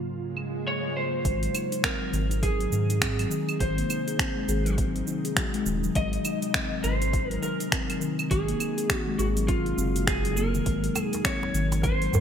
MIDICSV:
0, 0, Header, 1, 8, 480
1, 0, Start_track
1, 0, Tempo, 588235
1, 1021, Time_signature, 4, 2, 24, 8
1, 9959, End_track
2, 0, Start_track
2, 0, Title_t, "Electric slide guitar"
2, 0, Program_c, 0, 29
2, 551, Note_on_c, 0, 73, 102
2, 785, Note_off_c, 0, 73, 0
2, 788, Note_on_c, 0, 72, 96
2, 1502, Note_off_c, 0, 72, 0
2, 1505, Note_on_c, 0, 70, 92
2, 1981, Note_off_c, 0, 70, 0
2, 1984, Note_on_c, 0, 68, 98
2, 2942, Note_on_c, 0, 72, 86
2, 2971, Note_off_c, 0, 68, 0
2, 3869, Note_off_c, 0, 72, 0
2, 4865, Note_on_c, 0, 75, 109
2, 5551, Note_off_c, 0, 75, 0
2, 5580, Note_on_c, 0, 72, 102
2, 5964, Note_off_c, 0, 72, 0
2, 5964, Note_on_c, 0, 70, 102
2, 6056, Note_off_c, 0, 70, 0
2, 6060, Note_on_c, 0, 70, 85
2, 6508, Note_off_c, 0, 70, 0
2, 6781, Note_on_c, 0, 68, 93
2, 7311, Note_off_c, 0, 68, 0
2, 7311, Note_on_c, 0, 66, 93
2, 7493, Note_off_c, 0, 66, 0
2, 7497, Note_on_c, 0, 66, 88
2, 7562, Note_off_c, 0, 66, 0
2, 7737, Note_on_c, 0, 65, 101
2, 8187, Note_off_c, 0, 65, 0
2, 8218, Note_on_c, 0, 68, 100
2, 8443, Note_off_c, 0, 68, 0
2, 8456, Note_on_c, 0, 70, 99
2, 8987, Note_off_c, 0, 70, 0
2, 8987, Note_on_c, 0, 68, 99
2, 9177, Note_off_c, 0, 68, 0
2, 9180, Note_on_c, 0, 73, 101
2, 9655, Note_off_c, 0, 73, 0
2, 9658, Note_on_c, 0, 72, 117
2, 9959, Note_off_c, 0, 72, 0
2, 9959, End_track
3, 0, Start_track
3, 0, Title_t, "Steel tongue drum"
3, 0, Program_c, 1, 114
3, 1021, Note_on_c, 1, 56, 79
3, 1103, Note_off_c, 1, 56, 0
3, 1164, Note_on_c, 1, 54, 74
3, 1251, Note_off_c, 1, 54, 0
3, 1259, Note_on_c, 1, 63, 72
3, 1394, Note_off_c, 1, 63, 0
3, 1404, Note_on_c, 1, 63, 75
3, 1496, Note_off_c, 1, 63, 0
3, 1498, Note_on_c, 1, 60, 101
3, 1629, Note_off_c, 1, 60, 0
3, 1642, Note_on_c, 1, 54, 71
3, 1735, Note_off_c, 1, 54, 0
3, 1735, Note_on_c, 1, 51, 99
3, 1874, Note_off_c, 1, 51, 0
3, 1878, Note_on_c, 1, 63, 77
3, 1973, Note_off_c, 1, 63, 0
3, 1975, Note_on_c, 1, 51, 78
3, 2060, Note_off_c, 1, 51, 0
3, 2118, Note_on_c, 1, 54, 71
3, 2208, Note_off_c, 1, 54, 0
3, 2216, Note_on_c, 1, 63, 74
3, 2350, Note_off_c, 1, 63, 0
3, 2360, Note_on_c, 1, 63, 84
3, 2454, Note_off_c, 1, 63, 0
3, 2459, Note_on_c, 1, 60, 101
3, 2589, Note_off_c, 1, 60, 0
3, 2604, Note_on_c, 1, 54, 80
3, 2696, Note_off_c, 1, 54, 0
3, 2699, Note_on_c, 1, 51, 104
3, 2837, Note_off_c, 1, 51, 0
3, 2846, Note_on_c, 1, 60, 73
3, 2900, Note_off_c, 1, 60, 0
3, 3085, Note_on_c, 1, 58, 82
3, 3140, Note_off_c, 1, 58, 0
3, 3182, Note_on_c, 1, 63, 76
3, 3318, Note_off_c, 1, 63, 0
3, 3326, Note_on_c, 1, 68, 77
3, 3417, Note_off_c, 1, 68, 0
3, 3422, Note_on_c, 1, 60, 106
3, 3550, Note_off_c, 1, 60, 0
3, 3566, Note_on_c, 1, 56, 97
3, 3657, Note_off_c, 1, 56, 0
3, 3661, Note_on_c, 1, 68, 99
3, 3743, Note_off_c, 1, 68, 0
3, 3805, Note_on_c, 1, 54, 101
3, 3860, Note_off_c, 1, 54, 0
3, 3903, Note_on_c, 1, 60, 99
3, 4031, Note_off_c, 1, 60, 0
3, 4043, Note_on_c, 1, 60, 76
3, 4135, Note_off_c, 1, 60, 0
3, 4140, Note_on_c, 1, 63, 80
3, 4277, Note_off_c, 1, 63, 0
3, 4283, Note_on_c, 1, 68, 81
3, 4375, Note_off_c, 1, 68, 0
3, 4380, Note_on_c, 1, 66, 83
3, 4510, Note_off_c, 1, 66, 0
3, 4523, Note_on_c, 1, 56, 104
3, 4615, Note_off_c, 1, 56, 0
3, 4620, Note_on_c, 1, 51, 109
3, 4757, Note_off_c, 1, 51, 0
3, 4764, Note_on_c, 1, 54, 105
3, 4819, Note_off_c, 1, 54, 0
3, 4860, Note_on_c, 1, 56, 91
3, 4942, Note_off_c, 1, 56, 0
3, 5005, Note_on_c, 1, 54, 84
3, 5092, Note_off_c, 1, 54, 0
3, 5099, Note_on_c, 1, 63, 79
3, 5236, Note_off_c, 1, 63, 0
3, 5246, Note_on_c, 1, 63, 83
3, 5337, Note_off_c, 1, 63, 0
3, 5339, Note_on_c, 1, 60, 106
3, 5469, Note_off_c, 1, 60, 0
3, 5483, Note_on_c, 1, 54, 72
3, 5575, Note_off_c, 1, 54, 0
3, 5578, Note_on_c, 1, 51, 102
3, 5716, Note_off_c, 1, 51, 0
3, 5723, Note_on_c, 1, 63, 77
3, 5815, Note_off_c, 1, 63, 0
3, 5818, Note_on_c, 1, 51, 86
3, 5901, Note_off_c, 1, 51, 0
3, 5962, Note_on_c, 1, 54, 81
3, 6050, Note_off_c, 1, 54, 0
3, 6055, Note_on_c, 1, 63, 79
3, 6188, Note_off_c, 1, 63, 0
3, 6198, Note_on_c, 1, 63, 79
3, 6293, Note_off_c, 1, 63, 0
3, 6295, Note_on_c, 1, 60, 97
3, 6427, Note_off_c, 1, 60, 0
3, 6440, Note_on_c, 1, 54, 79
3, 6534, Note_off_c, 1, 54, 0
3, 6535, Note_on_c, 1, 51, 107
3, 6674, Note_off_c, 1, 51, 0
3, 6680, Note_on_c, 1, 60, 74
3, 6737, Note_off_c, 1, 60, 0
3, 6778, Note_on_c, 1, 51, 86
3, 6861, Note_off_c, 1, 51, 0
3, 6923, Note_on_c, 1, 58, 84
3, 6978, Note_off_c, 1, 58, 0
3, 7018, Note_on_c, 1, 63, 75
3, 7156, Note_off_c, 1, 63, 0
3, 7161, Note_on_c, 1, 68, 81
3, 7254, Note_off_c, 1, 68, 0
3, 7257, Note_on_c, 1, 60, 105
3, 7388, Note_off_c, 1, 60, 0
3, 7401, Note_on_c, 1, 56, 104
3, 7494, Note_off_c, 1, 56, 0
3, 7499, Note_on_c, 1, 68, 103
3, 7582, Note_off_c, 1, 68, 0
3, 7640, Note_on_c, 1, 54, 98
3, 7697, Note_off_c, 1, 54, 0
3, 7739, Note_on_c, 1, 60, 101
3, 7869, Note_off_c, 1, 60, 0
3, 7885, Note_on_c, 1, 60, 73
3, 7970, Note_off_c, 1, 60, 0
3, 7979, Note_on_c, 1, 60, 107
3, 8109, Note_off_c, 1, 60, 0
3, 8122, Note_on_c, 1, 66, 80
3, 8215, Note_off_c, 1, 66, 0
3, 8218, Note_on_c, 1, 68, 78
3, 8356, Note_off_c, 1, 68, 0
3, 8363, Note_on_c, 1, 54, 80
3, 8419, Note_off_c, 1, 54, 0
3, 8458, Note_on_c, 1, 58, 102
3, 8596, Note_off_c, 1, 58, 0
3, 8604, Note_on_c, 1, 51, 97
3, 8691, Note_off_c, 1, 51, 0
3, 8699, Note_on_c, 1, 56, 91
3, 8782, Note_off_c, 1, 56, 0
3, 8840, Note_on_c, 1, 54, 77
3, 8929, Note_off_c, 1, 54, 0
3, 8937, Note_on_c, 1, 63, 76
3, 9073, Note_off_c, 1, 63, 0
3, 9083, Note_on_c, 1, 63, 79
3, 9175, Note_off_c, 1, 63, 0
3, 9179, Note_on_c, 1, 60, 111
3, 9309, Note_off_c, 1, 60, 0
3, 9324, Note_on_c, 1, 54, 78
3, 9416, Note_off_c, 1, 54, 0
3, 9418, Note_on_c, 1, 51, 96
3, 9556, Note_off_c, 1, 51, 0
3, 9564, Note_on_c, 1, 63, 75
3, 9656, Note_off_c, 1, 63, 0
3, 9661, Note_on_c, 1, 51, 80
3, 9743, Note_off_c, 1, 51, 0
3, 9807, Note_on_c, 1, 54, 78
3, 9892, Note_off_c, 1, 54, 0
3, 9903, Note_on_c, 1, 63, 79
3, 9959, Note_off_c, 1, 63, 0
3, 9959, End_track
4, 0, Start_track
4, 0, Title_t, "Ambient pad"
4, 0, Program_c, 2, 92
4, 0, Note_on_c, 2, 44, 79
4, 0, Note_on_c, 2, 49, 70
4, 0, Note_on_c, 2, 54, 75
4, 0, Note_on_c, 2, 58, 68
4, 0, Note_on_c, 2, 65, 87
4, 987, Note_off_c, 2, 65, 0
4, 988, Note_off_c, 2, 44, 0
4, 989, Note_off_c, 2, 49, 0
4, 989, Note_off_c, 2, 54, 0
4, 989, Note_off_c, 2, 58, 0
4, 1025, Note_on_c, 2, 48, 80
4, 1025, Note_on_c, 2, 63, 89
4, 1028, Note_on_c, 2, 51, 73
4, 1028, Note_on_c, 2, 56, 75
4, 8670, Note_off_c, 2, 48, 0
4, 8671, Note_off_c, 2, 63, 0
4, 8672, Note_off_c, 2, 51, 0
4, 8672, Note_off_c, 2, 56, 0
4, 8700, Note_on_c, 2, 58, 78
4, 8701, Note_on_c, 2, 54, 78
4, 8701, Note_on_c, 2, 70, 94
4, 8702, Note_on_c, 2, 49, 83
4, 9959, Note_off_c, 2, 49, 0
4, 9959, Note_off_c, 2, 54, 0
4, 9959, Note_off_c, 2, 58, 0
4, 9959, Note_off_c, 2, 70, 0
4, 9959, End_track
5, 0, Start_track
5, 0, Title_t, "Analog synth bass"
5, 0, Program_c, 3, 38
5, 1020, Note_on_c, 3, 32, 103
5, 1206, Note_off_c, 3, 32, 0
5, 1740, Note_on_c, 3, 32, 101
5, 2177, Note_off_c, 3, 32, 0
5, 2222, Note_on_c, 3, 44, 88
5, 2658, Note_off_c, 3, 44, 0
5, 2940, Note_on_c, 3, 32, 105
5, 3127, Note_off_c, 3, 32, 0
5, 3660, Note_on_c, 3, 32, 100
5, 4097, Note_off_c, 3, 32, 0
5, 4622, Note_on_c, 3, 27, 103
5, 4807, Note_off_c, 3, 27, 0
5, 4860, Note_on_c, 3, 32, 104
5, 5046, Note_off_c, 3, 32, 0
5, 5583, Note_on_c, 3, 32, 97
5, 6018, Note_off_c, 3, 32, 0
5, 6779, Note_on_c, 3, 32, 98
5, 6966, Note_off_c, 3, 32, 0
5, 7500, Note_on_c, 3, 32, 94
5, 7937, Note_off_c, 3, 32, 0
5, 7981, Note_on_c, 3, 30, 92
5, 8658, Note_off_c, 3, 30, 0
5, 8700, Note_on_c, 3, 32, 103
5, 8886, Note_off_c, 3, 32, 0
5, 9420, Note_on_c, 3, 32, 96
5, 9857, Note_off_c, 3, 32, 0
5, 9900, Note_on_c, 3, 44, 89
5, 9959, Note_off_c, 3, 44, 0
5, 9959, End_track
6, 0, Start_track
6, 0, Title_t, "Swell"
6, 0, Program_c, 4, 103
6, 58, Note_on_c, 4, 60, 71
6, 1020, Note_off_c, 4, 60, 0
6, 9959, End_track
7, 0, Start_track
7, 0, Title_t, "Djembe"
7, 8940, Note_on_c, 9, 62, 56
7, 9021, Note_off_c, 9, 62, 0
7, 9093, Note_on_c, 9, 62, 47
7, 9175, Note_off_c, 9, 62, 0
7, 9326, Note_on_c, 9, 62, 55
7, 9408, Note_off_c, 9, 62, 0
7, 9564, Note_on_c, 9, 62, 48
7, 9646, Note_off_c, 9, 62, 0
7, 9656, Note_on_c, 9, 63, 83
7, 9738, Note_off_c, 9, 63, 0
7, 9898, Note_on_c, 9, 63, 31
7, 9913, Note_on_c, 9, 64, 90
7, 9959, Note_off_c, 9, 63, 0
7, 9959, Note_off_c, 9, 64, 0
7, 9959, End_track
8, 0, Start_track
8, 0, Title_t, "Drums"
8, 298, Note_on_c, 9, 75, 54
8, 380, Note_off_c, 9, 75, 0
8, 1020, Note_on_c, 9, 36, 98
8, 1020, Note_on_c, 9, 46, 57
8, 1021, Note_on_c, 9, 82, 33
8, 1101, Note_off_c, 9, 36, 0
8, 1102, Note_off_c, 9, 46, 0
8, 1102, Note_off_c, 9, 82, 0
8, 1165, Note_on_c, 9, 46, 47
8, 1247, Note_off_c, 9, 46, 0
8, 1261, Note_on_c, 9, 46, 34
8, 1261, Note_on_c, 9, 75, 75
8, 1262, Note_on_c, 9, 82, 81
8, 1343, Note_off_c, 9, 46, 0
8, 1343, Note_off_c, 9, 75, 0
8, 1343, Note_off_c, 9, 82, 0
8, 1405, Note_on_c, 9, 46, 46
8, 1406, Note_on_c, 9, 82, 43
8, 1487, Note_off_c, 9, 46, 0
8, 1487, Note_off_c, 9, 82, 0
8, 1500, Note_on_c, 9, 36, 106
8, 1501, Note_on_c, 9, 26, 110
8, 1501, Note_on_c, 9, 46, 60
8, 1501, Note_on_c, 9, 82, 34
8, 1581, Note_off_c, 9, 36, 0
8, 1582, Note_off_c, 9, 26, 0
8, 1582, Note_off_c, 9, 46, 0
8, 1583, Note_off_c, 9, 82, 0
8, 1742, Note_on_c, 9, 46, 33
8, 1742, Note_on_c, 9, 82, 76
8, 1824, Note_off_c, 9, 46, 0
8, 1824, Note_off_c, 9, 82, 0
8, 1886, Note_on_c, 9, 46, 47
8, 1886, Note_on_c, 9, 82, 44
8, 1967, Note_off_c, 9, 46, 0
8, 1968, Note_off_c, 9, 82, 0
8, 1981, Note_on_c, 9, 36, 103
8, 1982, Note_on_c, 9, 46, 59
8, 1982, Note_on_c, 9, 82, 32
8, 2062, Note_off_c, 9, 36, 0
8, 2063, Note_off_c, 9, 46, 0
8, 2064, Note_off_c, 9, 82, 0
8, 2125, Note_on_c, 9, 46, 34
8, 2207, Note_off_c, 9, 46, 0
8, 2222, Note_on_c, 9, 82, 76
8, 2303, Note_off_c, 9, 82, 0
8, 2366, Note_on_c, 9, 46, 47
8, 2366, Note_on_c, 9, 82, 45
8, 2447, Note_off_c, 9, 46, 0
8, 2448, Note_off_c, 9, 82, 0
8, 2461, Note_on_c, 9, 36, 108
8, 2462, Note_on_c, 9, 26, 107
8, 2462, Note_on_c, 9, 46, 63
8, 2462, Note_on_c, 9, 82, 35
8, 2542, Note_off_c, 9, 36, 0
8, 2544, Note_off_c, 9, 26, 0
8, 2544, Note_off_c, 9, 46, 0
8, 2544, Note_off_c, 9, 82, 0
8, 2605, Note_on_c, 9, 46, 59
8, 2605, Note_on_c, 9, 75, 66
8, 2687, Note_off_c, 9, 46, 0
8, 2687, Note_off_c, 9, 75, 0
8, 2701, Note_on_c, 9, 82, 78
8, 2783, Note_off_c, 9, 82, 0
8, 2845, Note_on_c, 9, 75, 74
8, 2845, Note_on_c, 9, 82, 44
8, 2926, Note_off_c, 9, 75, 0
8, 2927, Note_off_c, 9, 82, 0
8, 2941, Note_on_c, 9, 36, 105
8, 2941, Note_on_c, 9, 46, 56
8, 2941, Note_on_c, 9, 82, 34
8, 3022, Note_off_c, 9, 36, 0
8, 3023, Note_off_c, 9, 46, 0
8, 3023, Note_off_c, 9, 82, 0
8, 3085, Note_on_c, 9, 46, 43
8, 3167, Note_off_c, 9, 46, 0
8, 3182, Note_on_c, 9, 46, 31
8, 3182, Note_on_c, 9, 75, 77
8, 3182, Note_on_c, 9, 82, 77
8, 3264, Note_off_c, 9, 46, 0
8, 3264, Note_off_c, 9, 75, 0
8, 3264, Note_off_c, 9, 82, 0
8, 3327, Note_on_c, 9, 46, 44
8, 3327, Note_on_c, 9, 82, 47
8, 3408, Note_off_c, 9, 46, 0
8, 3409, Note_off_c, 9, 82, 0
8, 3420, Note_on_c, 9, 36, 108
8, 3423, Note_on_c, 9, 26, 107
8, 3423, Note_on_c, 9, 46, 58
8, 3423, Note_on_c, 9, 82, 34
8, 3502, Note_off_c, 9, 36, 0
8, 3504, Note_off_c, 9, 26, 0
8, 3504, Note_off_c, 9, 46, 0
8, 3505, Note_off_c, 9, 82, 0
8, 3661, Note_on_c, 9, 46, 32
8, 3661, Note_on_c, 9, 82, 85
8, 3742, Note_off_c, 9, 46, 0
8, 3743, Note_off_c, 9, 82, 0
8, 3804, Note_on_c, 9, 46, 43
8, 3804, Note_on_c, 9, 82, 45
8, 3885, Note_off_c, 9, 46, 0
8, 3886, Note_off_c, 9, 82, 0
8, 3900, Note_on_c, 9, 36, 108
8, 3901, Note_on_c, 9, 46, 54
8, 3901, Note_on_c, 9, 82, 32
8, 3982, Note_off_c, 9, 36, 0
8, 3982, Note_off_c, 9, 46, 0
8, 3983, Note_off_c, 9, 82, 0
8, 4045, Note_on_c, 9, 46, 33
8, 4126, Note_off_c, 9, 46, 0
8, 4139, Note_on_c, 9, 82, 77
8, 4220, Note_off_c, 9, 82, 0
8, 4283, Note_on_c, 9, 46, 46
8, 4283, Note_on_c, 9, 82, 46
8, 4364, Note_off_c, 9, 46, 0
8, 4365, Note_off_c, 9, 82, 0
8, 4379, Note_on_c, 9, 26, 108
8, 4379, Note_on_c, 9, 46, 57
8, 4379, Note_on_c, 9, 82, 35
8, 4380, Note_on_c, 9, 36, 112
8, 4460, Note_off_c, 9, 26, 0
8, 4460, Note_off_c, 9, 46, 0
8, 4461, Note_off_c, 9, 82, 0
8, 4462, Note_off_c, 9, 36, 0
8, 4522, Note_on_c, 9, 46, 55
8, 4603, Note_off_c, 9, 46, 0
8, 4619, Note_on_c, 9, 82, 80
8, 4700, Note_off_c, 9, 82, 0
8, 4762, Note_on_c, 9, 82, 45
8, 4844, Note_off_c, 9, 82, 0
8, 4858, Note_on_c, 9, 46, 55
8, 4858, Note_on_c, 9, 82, 34
8, 4860, Note_on_c, 9, 36, 112
8, 4940, Note_off_c, 9, 46, 0
8, 4940, Note_off_c, 9, 82, 0
8, 4941, Note_off_c, 9, 36, 0
8, 5002, Note_on_c, 9, 46, 40
8, 5083, Note_off_c, 9, 46, 0
8, 5098, Note_on_c, 9, 46, 30
8, 5098, Note_on_c, 9, 75, 77
8, 5098, Note_on_c, 9, 82, 79
8, 5179, Note_off_c, 9, 46, 0
8, 5179, Note_off_c, 9, 75, 0
8, 5180, Note_off_c, 9, 82, 0
8, 5241, Note_on_c, 9, 46, 41
8, 5242, Note_on_c, 9, 82, 47
8, 5323, Note_off_c, 9, 46, 0
8, 5323, Note_off_c, 9, 82, 0
8, 5339, Note_on_c, 9, 26, 104
8, 5339, Note_on_c, 9, 46, 54
8, 5339, Note_on_c, 9, 82, 36
8, 5340, Note_on_c, 9, 36, 105
8, 5420, Note_off_c, 9, 26, 0
8, 5420, Note_off_c, 9, 46, 0
8, 5421, Note_off_c, 9, 82, 0
8, 5422, Note_off_c, 9, 36, 0
8, 5580, Note_on_c, 9, 46, 31
8, 5580, Note_on_c, 9, 82, 80
8, 5662, Note_off_c, 9, 46, 0
8, 5662, Note_off_c, 9, 82, 0
8, 5726, Note_on_c, 9, 46, 43
8, 5726, Note_on_c, 9, 82, 48
8, 5807, Note_off_c, 9, 46, 0
8, 5807, Note_off_c, 9, 82, 0
8, 5821, Note_on_c, 9, 36, 114
8, 5822, Note_on_c, 9, 46, 54
8, 5822, Note_on_c, 9, 82, 36
8, 5903, Note_off_c, 9, 36, 0
8, 5903, Note_off_c, 9, 46, 0
8, 5904, Note_off_c, 9, 82, 0
8, 5966, Note_on_c, 9, 46, 30
8, 6047, Note_off_c, 9, 46, 0
8, 6060, Note_on_c, 9, 82, 83
8, 6142, Note_off_c, 9, 82, 0
8, 6205, Note_on_c, 9, 46, 46
8, 6205, Note_on_c, 9, 82, 50
8, 6286, Note_off_c, 9, 46, 0
8, 6286, Note_off_c, 9, 82, 0
8, 6300, Note_on_c, 9, 36, 109
8, 6301, Note_on_c, 9, 26, 104
8, 6301, Note_on_c, 9, 46, 55
8, 6301, Note_on_c, 9, 82, 34
8, 6382, Note_off_c, 9, 36, 0
8, 6383, Note_off_c, 9, 26, 0
8, 6383, Note_off_c, 9, 46, 0
8, 6383, Note_off_c, 9, 82, 0
8, 6444, Note_on_c, 9, 46, 56
8, 6444, Note_on_c, 9, 75, 60
8, 6526, Note_off_c, 9, 46, 0
8, 6526, Note_off_c, 9, 75, 0
8, 6539, Note_on_c, 9, 82, 82
8, 6620, Note_off_c, 9, 82, 0
8, 6684, Note_on_c, 9, 75, 77
8, 6684, Note_on_c, 9, 82, 47
8, 6765, Note_off_c, 9, 75, 0
8, 6766, Note_off_c, 9, 82, 0
8, 6780, Note_on_c, 9, 36, 110
8, 6780, Note_on_c, 9, 46, 57
8, 6780, Note_on_c, 9, 82, 34
8, 6861, Note_off_c, 9, 46, 0
8, 6862, Note_off_c, 9, 36, 0
8, 6862, Note_off_c, 9, 82, 0
8, 6923, Note_on_c, 9, 46, 43
8, 7005, Note_off_c, 9, 46, 0
8, 7020, Note_on_c, 9, 46, 30
8, 7020, Note_on_c, 9, 75, 75
8, 7020, Note_on_c, 9, 82, 82
8, 7102, Note_off_c, 9, 46, 0
8, 7102, Note_off_c, 9, 75, 0
8, 7102, Note_off_c, 9, 82, 0
8, 7164, Note_on_c, 9, 46, 41
8, 7164, Note_on_c, 9, 82, 46
8, 7245, Note_off_c, 9, 46, 0
8, 7246, Note_off_c, 9, 82, 0
8, 7260, Note_on_c, 9, 26, 104
8, 7260, Note_on_c, 9, 36, 97
8, 7260, Note_on_c, 9, 46, 55
8, 7261, Note_on_c, 9, 82, 35
8, 7342, Note_off_c, 9, 26, 0
8, 7342, Note_off_c, 9, 36, 0
8, 7342, Note_off_c, 9, 46, 0
8, 7342, Note_off_c, 9, 82, 0
8, 7501, Note_on_c, 9, 46, 30
8, 7501, Note_on_c, 9, 82, 82
8, 7582, Note_off_c, 9, 46, 0
8, 7583, Note_off_c, 9, 82, 0
8, 7644, Note_on_c, 9, 46, 43
8, 7644, Note_on_c, 9, 82, 46
8, 7725, Note_off_c, 9, 46, 0
8, 7726, Note_off_c, 9, 82, 0
8, 7739, Note_on_c, 9, 36, 109
8, 7740, Note_on_c, 9, 46, 55
8, 7740, Note_on_c, 9, 82, 34
8, 7821, Note_off_c, 9, 36, 0
8, 7821, Note_off_c, 9, 46, 0
8, 7822, Note_off_c, 9, 82, 0
8, 7884, Note_on_c, 9, 46, 30
8, 7965, Note_off_c, 9, 46, 0
8, 7982, Note_on_c, 9, 82, 81
8, 8063, Note_off_c, 9, 82, 0
8, 8126, Note_on_c, 9, 46, 44
8, 8126, Note_on_c, 9, 82, 47
8, 8207, Note_off_c, 9, 46, 0
8, 8207, Note_off_c, 9, 82, 0
8, 8220, Note_on_c, 9, 36, 117
8, 8221, Note_on_c, 9, 26, 102
8, 8221, Note_on_c, 9, 46, 52
8, 8221, Note_on_c, 9, 82, 35
8, 8301, Note_off_c, 9, 36, 0
8, 8303, Note_off_c, 9, 26, 0
8, 8303, Note_off_c, 9, 46, 0
8, 8303, Note_off_c, 9, 82, 0
8, 8364, Note_on_c, 9, 46, 53
8, 8445, Note_off_c, 9, 46, 0
8, 8459, Note_on_c, 9, 82, 81
8, 8541, Note_off_c, 9, 82, 0
8, 8604, Note_on_c, 9, 82, 46
8, 8686, Note_off_c, 9, 82, 0
8, 8699, Note_on_c, 9, 46, 55
8, 8699, Note_on_c, 9, 82, 34
8, 8700, Note_on_c, 9, 36, 100
8, 8781, Note_off_c, 9, 46, 0
8, 8781, Note_off_c, 9, 82, 0
8, 8782, Note_off_c, 9, 36, 0
8, 8843, Note_on_c, 9, 46, 41
8, 8924, Note_off_c, 9, 46, 0
8, 8939, Note_on_c, 9, 46, 30
8, 8939, Note_on_c, 9, 75, 78
8, 8940, Note_on_c, 9, 82, 80
8, 9021, Note_off_c, 9, 46, 0
8, 9021, Note_off_c, 9, 75, 0
8, 9021, Note_off_c, 9, 82, 0
8, 9082, Note_on_c, 9, 46, 41
8, 9082, Note_on_c, 9, 82, 48
8, 9164, Note_off_c, 9, 46, 0
8, 9164, Note_off_c, 9, 82, 0
8, 9178, Note_on_c, 9, 26, 100
8, 9178, Note_on_c, 9, 46, 52
8, 9179, Note_on_c, 9, 82, 34
8, 9180, Note_on_c, 9, 36, 98
8, 9260, Note_off_c, 9, 26, 0
8, 9260, Note_off_c, 9, 46, 0
8, 9260, Note_off_c, 9, 82, 0
8, 9262, Note_off_c, 9, 36, 0
8, 9421, Note_on_c, 9, 46, 31
8, 9421, Note_on_c, 9, 82, 78
8, 9502, Note_off_c, 9, 46, 0
8, 9502, Note_off_c, 9, 82, 0
8, 9564, Note_on_c, 9, 46, 42
8, 9564, Note_on_c, 9, 82, 44
8, 9645, Note_off_c, 9, 46, 0
8, 9646, Note_off_c, 9, 82, 0
8, 9660, Note_on_c, 9, 36, 109
8, 9660, Note_on_c, 9, 46, 49
8, 9661, Note_on_c, 9, 82, 35
8, 9742, Note_off_c, 9, 36, 0
8, 9742, Note_off_c, 9, 46, 0
8, 9742, Note_off_c, 9, 82, 0
8, 9806, Note_on_c, 9, 46, 32
8, 9888, Note_off_c, 9, 46, 0
8, 9902, Note_on_c, 9, 82, 79
8, 9959, Note_off_c, 9, 82, 0
8, 9959, End_track
0, 0, End_of_file